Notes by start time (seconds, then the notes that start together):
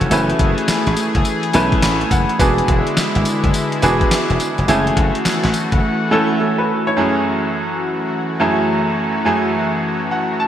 Already playing: E3 A3 C#4 E4 F#4
0.01 F1, closed hi-hat
0.11 F#1 A3 C#4 E4 G#4 B4, closed hi-hat, tambourine
0.30 closed hi-hat
0.39 F#1, kick, closed hi-hat
0.58 closed hi-hat
0.68 muted slap bass stroke, snare, clap, closed hi-hat, tambourine
0.87 A1, closed hi-hat
0.96 closed hi-hat, tambourine
1.15 F#1, kick, closed hi-hat
1.25 closed hi-hat, tambourine
1.43 closed hi-hat
1.53 B1 A3 C#4 E4 B4, closed hi-hat, tambourine
1.72 kick, closed hi-hat
1.82 A1 B5, snare, clap, closed hi-hat, tambourine
2.01 closed hi-hat
2.11 F#1 F#5, kick, closed hi-hat, tambourine
2.29 closed hi-hat
2.39 E1 D3 G#3 B3 D4 E4 F#4 G#4, kick, closed hi-hat, tambourine
2.58 closed hi-hat
2.68 E1, kick, closed hi-hat
2.87 closed hi-hat
2.97 muted slap bass stroke, snare, clap, closed hi-hat, tambourine
3.15 G#1, closed hi-hat
3.25 closed hi-hat, tambourine
3.44 F#1, kick, closed hi-hat
3.54 closed hi-hat, tambourine
3.72 closed hi-hat
3.82 E1 B3 D4 F#4 G#4, closed hi-hat, tambourine
4.01 kick, closed hi-hat
4.11 muted slap bass stroke, snare, clap, closed hi-hat, tambourine
4.30 E1, closed hi-hat
4.40 closed hi-hat, tambourine
4.58 F1, closed hi-hat
4.68 F#1 E3 A3 C#4 E4 F#4 G#4, closed hi-hat, tambourine
4.87 closed hi-hat
4.97 F#1, kick, closed hi-hat
5.15 closed hi-hat
5.25 muted slap bass stroke, snare, clap, closed hi-hat, tambourine
5.44 A1, snare, closed hi-hat
5.54 closed hi-hat, tambourine
5.72 F#1, kick, closed hi-hat
6.11 A3 C#4 E4 A4
6.40 C#4 A4
6.58 B4
6.87 E4 C#5
6.96 F#2 E3 A3 C#4 E4 F#4 G#4
8.40 F#2 A3 C#4 E4 G#4
9.25 F#2 A3 C#4 E4 G#4
10.11 F#5
10.40 A5